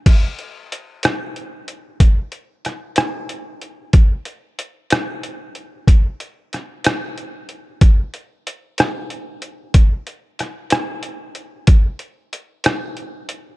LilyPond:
\new DrumStaff \with { instrumentName = "Drums" } \drummode { \time 6/8 \tempo 4. = 62 <cymc hh bd>8 hh8 hh8 <hh ss>8 hh8 hh8 | <hh bd>8 hh8 <hh ss>8 <hh ss>8 hh8 hh8 | <hh bd>8 hh8 hh8 <hh ss>8 hh8 hh8 | <hh bd>8 hh8 <hh ss>8 <hh ss>8 hh8 hh8 |
<hh bd>8 hh8 hh8 <hh ss>8 hh8 hh8 | <hh bd>8 hh8 <hh ss>8 <hh ss>8 hh8 hh8 | <hh bd>8 hh8 hh8 <hh ss>8 hh8 hh8 | }